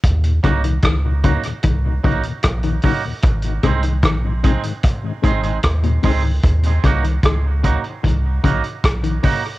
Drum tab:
HH |xxxxx-xxx-xxxxo-|xxxxx-xxx-xxxxo-|xxxxx-xxx-xxxxo-|
SD |--r-r-------r---|--r-r-------r---|--r-r-------r---|
BD |o-o-o-o-o-o-o-o-|o-o-o-o-o-o-o-o-|o-o-o-o-o-o-o-o-|